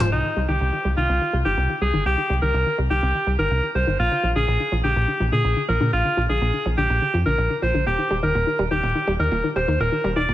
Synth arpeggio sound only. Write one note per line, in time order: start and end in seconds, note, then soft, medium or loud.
0.00 0.08 F3 loud
0.13 0.23 C3 medium
0.24 0.29 D#3 medium
0.36 0.41 G3 medium
0.49 0.56 D#3 medium
0.61 0.72 C3 medium
0.73 0.77 D#3 medium
0.85 0.89 G3 loud
0.97 1.04 D#3 medium
1.09 1.20 C3 medium
1.21 1.26 D#3 medium
1.33 1.38 G3 medium
1.45 1.53 D#3 medium
1.57 1.69 C3 medium
1.69 1.74 D#3 medium
1.82 1.86 G3 loud
1.94 2.01 D#3 loud
2.06 2.17 C3 medium
2.18 2.22 D#3 medium
2.30 2.34 G3 medium
2.42 2.49 D#3 medium
2.54 2.65 C3 medium
2.66 2.71 D#3 medium
2.78 2.83 G3 loud
2.90 2.98 D#3 medium
3.03 3.14 C3 medium
3.15 3.19 D#3 medium
3.27 3.31 G3 medium
3.39 3.46 D#3 loud
3.51 3.62 C3 medium
3.63 3.68 D#3 medium
3.75 3.80 G3 loud
3.87 3.95 D#3 loud
3.99 4.10 A#2 medium
4.11 4.16 D3 medium
4.23 4.28 F3 medium
4.36 4.43 D3 loud
4.48 4.59 A#2 medium
4.60 4.64 D3 medium
4.72 4.76 F3 loud
4.84 4.91 D3 loud
4.96 5.07 A#2 medium
5.08 5.13 D3 medium
5.20 5.25 F3 medium
5.32 5.40 D3 medium
5.44 5.55 A#2 medium
5.57 5.61 D3 medium
5.69 5.73 F3 medium
5.81 5.88 D3 loud
5.93 6.04 A#2 medium
6.05 6.09 D3 medium
6.17 6.22 F3 medium
6.29 6.37 D3 medium
6.41 6.52 A#2 medium
6.53 6.58 D3 medium
6.66 6.70 F3 loud
6.78 6.85 D3 medium
6.90 7.01 A#2 medium
7.02 7.06 D3 medium
7.14 7.18 F3 medium
7.26 7.33 D3 medium
7.38 7.49 A#2 medium
7.50 7.55 D3 medium
7.62 7.67 F3 medium
7.74 7.82 D3 loud
7.86 7.97 A#2 medium
7.98 8.03 D#3 medium
8.11 8.15 G3 medium
8.23 8.30 D#3 loud
8.35 8.46 A#2 medium
8.47 8.51 D#3 medium
8.59 8.64 G3 loud
8.71 8.79 D#3 loud
8.83 8.94 A#2 medium
8.95 9.00 D#3 medium
9.07 9.12 G3 medium
9.20 9.27 D#3 medium
9.32 9.43 A#2 medium
9.44 9.48 D#3 medium
9.56 9.60 G3 loud
9.68 9.75 D#3 loud
9.80 9.91 A#2 medium
9.92 9.97 D#3 medium
10.04 10.09 G3 loud
10.16 10.24 D#3 medium
10.29 10.34 A#2 medium